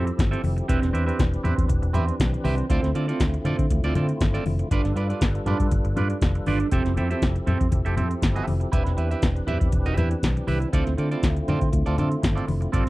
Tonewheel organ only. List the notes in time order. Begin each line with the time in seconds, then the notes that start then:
Already playing: F3 C4 E4 G4 A4
0.69 E3 D4 B4
2.70 D3 A3 E4 F4
4.71 G3 D4 A4 B4
6.72 F3 C4 E4 G4
8.72 E3 D4 B4
10.72 D3 A3 E4 F4
12.74 G3